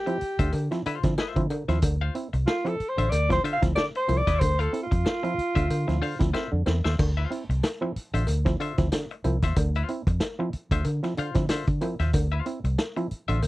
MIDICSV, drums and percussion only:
0, 0, Header, 1, 2, 480
1, 0, Start_track
1, 0, Key_signature, -1, "minor"
1, 0, Tempo, 644468
1, 1364, Time_signature, 4, 2, 24, 8
1, 10035, End_track
2, 0, Start_track
2, 0, Title_t, "Drums"
2, 51, Note_on_c, 9, 42, 38
2, 125, Note_off_c, 9, 42, 0
2, 156, Note_on_c, 9, 42, 74
2, 230, Note_off_c, 9, 42, 0
2, 291, Note_on_c, 9, 36, 94
2, 292, Note_on_c, 9, 42, 53
2, 366, Note_off_c, 9, 36, 0
2, 366, Note_off_c, 9, 42, 0
2, 392, Note_on_c, 9, 56, 79
2, 394, Note_on_c, 9, 42, 86
2, 467, Note_off_c, 9, 56, 0
2, 468, Note_off_c, 9, 42, 0
2, 531, Note_on_c, 9, 38, 41
2, 533, Note_on_c, 9, 42, 39
2, 605, Note_off_c, 9, 38, 0
2, 607, Note_off_c, 9, 42, 0
2, 638, Note_on_c, 9, 42, 74
2, 713, Note_off_c, 9, 42, 0
2, 768, Note_on_c, 9, 42, 54
2, 770, Note_on_c, 9, 38, 38
2, 773, Note_on_c, 9, 36, 110
2, 843, Note_off_c, 9, 42, 0
2, 845, Note_off_c, 9, 38, 0
2, 847, Note_off_c, 9, 36, 0
2, 878, Note_on_c, 9, 56, 101
2, 879, Note_on_c, 9, 38, 121
2, 953, Note_off_c, 9, 56, 0
2, 954, Note_off_c, 9, 38, 0
2, 1012, Note_on_c, 9, 42, 35
2, 1015, Note_on_c, 9, 36, 107
2, 1087, Note_off_c, 9, 42, 0
2, 1090, Note_off_c, 9, 36, 0
2, 1120, Note_on_c, 9, 56, 79
2, 1121, Note_on_c, 9, 42, 66
2, 1194, Note_off_c, 9, 56, 0
2, 1196, Note_off_c, 9, 42, 0
2, 1255, Note_on_c, 9, 38, 34
2, 1255, Note_on_c, 9, 42, 50
2, 1329, Note_off_c, 9, 38, 0
2, 1330, Note_off_c, 9, 42, 0
2, 1355, Note_on_c, 9, 42, 114
2, 1360, Note_on_c, 9, 36, 123
2, 1365, Note_on_c, 9, 56, 86
2, 1430, Note_off_c, 9, 42, 0
2, 1435, Note_off_c, 9, 36, 0
2, 1440, Note_off_c, 9, 56, 0
2, 1601, Note_on_c, 9, 42, 76
2, 1675, Note_off_c, 9, 42, 0
2, 1739, Note_on_c, 9, 42, 53
2, 1813, Note_off_c, 9, 42, 0
2, 1843, Note_on_c, 9, 38, 118
2, 1847, Note_on_c, 9, 56, 81
2, 1917, Note_off_c, 9, 38, 0
2, 1922, Note_off_c, 9, 56, 0
2, 1981, Note_on_c, 9, 42, 37
2, 2055, Note_off_c, 9, 42, 0
2, 2086, Note_on_c, 9, 42, 70
2, 2160, Note_off_c, 9, 42, 0
2, 2222, Note_on_c, 9, 42, 59
2, 2297, Note_off_c, 9, 42, 0
2, 2323, Note_on_c, 9, 42, 103
2, 2324, Note_on_c, 9, 56, 83
2, 2398, Note_off_c, 9, 42, 0
2, 2398, Note_off_c, 9, 56, 0
2, 2460, Note_on_c, 9, 36, 99
2, 2464, Note_on_c, 9, 38, 38
2, 2466, Note_on_c, 9, 42, 41
2, 2535, Note_off_c, 9, 36, 0
2, 2539, Note_off_c, 9, 38, 0
2, 2541, Note_off_c, 9, 42, 0
2, 2568, Note_on_c, 9, 42, 83
2, 2643, Note_off_c, 9, 42, 0
2, 2700, Note_on_c, 9, 42, 52
2, 2701, Note_on_c, 9, 36, 102
2, 2702, Note_on_c, 9, 38, 39
2, 2775, Note_off_c, 9, 36, 0
2, 2775, Note_off_c, 9, 42, 0
2, 2777, Note_off_c, 9, 38, 0
2, 2800, Note_on_c, 9, 56, 102
2, 2810, Note_on_c, 9, 38, 118
2, 2874, Note_off_c, 9, 56, 0
2, 2884, Note_off_c, 9, 38, 0
2, 2943, Note_on_c, 9, 42, 40
2, 3017, Note_off_c, 9, 42, 0
2, 3044, Note_on_c, 9, 56, 79
2, 3046, Note_on_c, 9, 42, 69
2, 3119, Note_off_c, 9, 56, 0
2, 3120, Note_off_c, 9, 42, 0
2, 3182, Note_on_c, 9, 36, 85
2, 3182, Note_on_c, 9, 38, 30
2, 3182, Note_on_c, 9, 42, 47
2, 3256, Note_off_c, 9, 36, 0
2, 3256, Note_off_c, 9, 38, 0
2, 3257, Note_off_c, 9, 42, 0
2, 3286, Note_on_c, 9, 56, 89
2, 3287, Note_on_c, 9, 36, 121
2, 3287, Note_on_c, 9, 42, 110
2, 3360, Note_off_c, 9, 56, 0
2, 3361, Note_off_c, 9, 42, 0
2, 3362, Note_off_c, 9, 36, 0
2, 3426, Note_on_c, 9, 42, 37
2, 3501, Note_off_c, 9, 42, 0
2, 3528, Note_on_c, 9, 42, 68
2, 3602, Note_off_c, 9, 42, 0
2, 3663, Note_on_c, 9, 36, 100
2, 3667, Note_on_c, 9, 42, 47
2, 3737, Note_off_c, 9, 36, 0
2, 3742, Note_off_c, 9, 42, 0
2, 3767, Note_on_c, 9, 56, 79
2, 3770, Note_on_c, 9, 38, 112
2, 3842, Note_off_c, 9, 56, 0
2, 3844, Note_off_c, 9, 38, 0
2, 3905, Note_on_c, 9, 42, 37
2, 3980, Note_off_c, 9, 42, 0
2, 4013, Note_on_c, 9, 42, 65
2, 4087, Note_off_c, 9, 42, 0
2, 4143, Note_on_c, 9, 36, 96
2, 4147, Note_on_c, 9, 42, 53
2, 4218, Note_off_c, 9, 36, 0
2, 4221, Note_off_c, 9, 42, 0
2, 4247, Note_on_c, 9, 42, 92
2, 4249, Note_on_c, 9, 56, 74
2, 4322, Note_off_c, 9, 42, 0
2, 4324, Note_off_c, 9, 56, 0
2, 4384, Note_on_c, 9, 38, 40
2, 4386, Note_on_c, 9, 42, 39
2, 4459, Note_off_c, 9, 38, 0
2, 4460, Note_off_c, 9, 42, 0
2, 4489, Note_on_c, 9, 46, 77
2, 4564, Note_off_c, 9, 46, 0
2, 4619, Note_on_c, 9, 42, 52
2, 4621, Note_on_c, 9, 38, 40
2, 4623, Note_on_c, 9, 36, 104
2, 4694, Note_off_c, 9, 42, 0
2, 4696, Note_off_c, 9, 38, 0
2, 4697, Note_off_c, 9, 36, 0
2, 4726, Note_on_c, 9, 56, 96
2, 4728, Note_on_c, 9, 38, 67
2, 4801, Note_off_c, 9, 56, 0
2, 4803, Note_off_c, 9, 38, 0
2, 4962, Note_on_c, 9, 56, 76
2, 4966, Note_on_c, 9, 38, 92
2, 5037, Note_off_c, 9, 56, 0
2, 5040, Note_off_c, 9, 38, 0
2, 5102, Note_on_c, 9, 38, 94
2, 5176, Note_off_c, 9, 38, 0
2, 5207, Note_on_c, 9, 49, 103
2, 5208, Note_on_c, 9, 36, 127
2, 5208, Note_on_c, 9, 56, 81
2, 5282, Note_off_c, 9, 49, 0
2, 5283, Note_off_c, 9, 36, 0
2, 5283, Note_off_c, 9, 56, 0
2, 5449, Note_on_c, 9, 42, 77
2, 5523, Note_off_c, 9, 42, 0
2, 5589, Note_on_c, 9, 42, 50
2, 5663, Note_off_c, 9, 42, 0
2, 5686, Note_on_c, 9, 56, 78
2, 5687, Note_on_c, 9, 38, 107
2, 5689, Note_on_c, 9, 42, 76
2, 5760, Note_off_c, 9, 56, 0
2, 5761, Note_off_c, 9, 38, 0
2, 5764, Note_off_c, 9, 42, 0
2, 5930, Note_on_c, 9, 42, 75
2, 6005, Note_off_c, 9, 42, 0
2, 6068, Note_on_c, 9, 42, 60
2, 6143, Note_off_c, 9, 42, 0
2, 6159, Note_on_c, 9, 56, 69
2, 6165, Note_on_c, 9, 42, 95
2, 6234, Note_off_c, 9, 56, 0
2, 6239, Note_off_c, 9, 42, 0
2, 6301, Note_on_c, 9, 36, 104
2, 6302, Note_on_c, 9, 38, 41
2, 6303, Note_on_c, 9, 42, 38
2, 6375, Note_off_c, 9, 36, 0
2, 6376, Note_off_c, 9, 38, 0
2, 6378, Note_off_c, 9, 42, 0
2, 6407, Note_on_c, 9, 42, 74
2, 6481, Note_off_c, 9, 42, 0
2, 6537, Note_on_c, 9, 42, 55
2, 6539, Note_on_c, 9, 38, 40
2, 6542, Note_on_c, 9, 36, 110
2, 6612, Note_off_c, 9, 42, 0
2, 6614, Note_off_c, 9, 38, 0
2, 6617, Note_off_c, 9, 36, 0
2, 6643, Note_on_c, 9, 42, 109
2, 6644, Note_on_c, 9, 56, 94
2, 6645, Note_on_c, 9, 38, 116
2, 6718, Note_off_c, 9, 42, 0
2, 6718, Note_off_c, 9, 56, 0
2, 6720, Note_off_c, 9, 38, 0
2, 6783, Note_on_c, 9, 42, 36
2, 6857, Note_off_c, 9, 42, 0
2, 6885, Note_on_c, 9, 56, 69
2, 6886, Note_on_c, 9, 42, 61
2, 6959, Note_off_c, 9, 56, 0
2, 6960, Note_off_c, 9, 42, 0
2, 7017, Note_on_c, 9, 38, 34
2, 7018, Note_on_c, 9, 42, 54
2, 7021, Note_on_c, 9, 36, 76
2, 7092, Note_off_c, 9, 38, 0
2, 7092, Note_off_c, 9, 42, 0
2, 7095, Note_off_c, 9, 36, 0
2, 7122, Note_on_c, 9, 42, 106
2, 7124, Note_on_c, 9, 56, 96
2, 7125, Note_on_c, 9, 36, 127
2, 7197, Note_off_c, 9, 42, 0
2, 7199, Note_off_c, 9, 56, 0
2, 7200, Note_off_c, 9, 36, 0
2, 7263, Note_on_c, 9, 42, 33
2, 7337, Note_off_c, 9, 42, 0
2, 7363, Note_on_c, 9, 42, 73
2, 7437, Note_off_c, 9, 42, 0
2, 7499, Note_on_c, 9, 36, 105
2, 7500, Note_on_c, 9, 42, 51
2, 7574, Note_off_c, 9, 36, 0
2, 7575, Note_off_c, 9, 42, 0
2, 7598, Note_on_c, 9, 38, 109
2, 7601, Note_on_c, 9, 42, 87
2, 7602, Note_on_c, 9, 56, 76
2, 7673, Note_off_c, 9, 38, 0
2, 7675, Note_off_c, 9, 42, 0
2, 7677, Note_off_c, 9, 56, 0
2, 7843, Note_on_c, 9, 42, 73
2, 7917, Note_off_c, 9, 42, 0
2, 7978, Note_on_c, 9, 36, 89
2, 7978, Note_on_c, 9, 42, 57
2, 8052, Note_off_c, 9, 36, 0
2, 8053, Note_off_c, 9, 42, 0
2, 8078, Note_on_c, 9, 42, 85
2, 8079, Note_on_c, 9, 56, 76
2, 8152, Note_off_c, 9, 42, 0
2, 8153, Note_off_c, 9, 56, 0
2, 8217, Note_on_c, 9, 38, 40
2, 8218, Note_on_c, 9, 42, 42
2, 8291, Note_off_c, 9, 38, 0
2, 8293, Note_off_c, 9, 42, 0
2, 8321, Note_on_c, 9, 42, 74
2, 8396, Note_off_c, 9, 42, 0
2, 8450, Note_on_c, 9, 42, 51
2, 8452, Note_on_c, 9, 38, 39
2, 8457, Note_on_c, 9, 36, 109
2, 8524, Note_off_c, 9, 42, 0
2, 8526, Note_off_c, 9, 38, 0
2, 8531, Note_off_c, 9, 36, 0
2, 8556, Note_on_c, 9, 42, 108
2, 8558, Note_on_c, 9, 38, 112
2, 8559, Note_on_c, 9, 56, 89
2, 8630, Note_off_c, 9, 42, 0
2, 8633, Note_off_c, 9, 38, 0
2, 8633, Note_off_c, 9, 56, 0
2, 8692, Note_on_c, 9, 42, 37
2, 8697, Note_on_c, 9, 36, 107
2, 8766, Note_off_c, 9, 42, 0
2, 8771, Note_off_c, 9, 36, 0
2, 8797, Note_on_c, 9, 42, 66
2, 8801, Note_on_c, 9, 56, 81
2, 8872, Note_off_c, 9, 42, 0
2, 8876, Note_off_c, 9, 56, 0
2, 8934, Note_on_c, 9, 38, 34
2, 8934, Note_on_c, 9, 42, 52
2, 9008, Note_off_c, 9, 38, 0
2, 9009, Note_off_c, 9, 42, 0
2, 9036, Note_on_c, 9, 42, 106
2, 9042, Note_on_c, 9, 36, 124
2, 9043, Note_on_c, 9, 56, 89
2, 9111, Note_off_c, 9, 42, 0
2, 9116, Note_off_c, 9, 36, 0
2, 9117, Note_off_c, 9, 56, 0
2, 9279, Note_on_c, 9, 42, 72
2, 9353, Note_off_c, 9, 42, 0
2, 9418, Note_on_c, 9, 42, 51
2, 9493, Note_off_c, 9, 42, 0
2, 9522, Note_on_c, 9, 38, 103
2, 9522, Note_on_c, 9, 56, 73
2, 9525, Note_on_c, 9, 42, 87
2, 9596, Note_off_c, 9, 38, 0
2, 9596, Note_off_c, 9, 56, 0
2, 9599, Note_off_c, 9, 42, 0
2, 9659, Note_on_c, 9, 42, 38
2, 9733, Note_off_c, 9, 42, 0
2, 9764, Note_on_c, 9, 42, 68
2, 9838, Note_off_c, 9, 42, 0
2, 9901, Note_on_c, 9, 42, 58
2, 9976, Note_off_c, 9, 42, 0
2, 9999, Note_on_c, 9, 56, 82
2, 10003, Note_on_c, 9, 42, 97
2, 10035, Note_off_c, 9, 42, 0
2, 10035, Note_off_c, 9, 56, 0
2, 10035, End_track
0, 0, End_of_file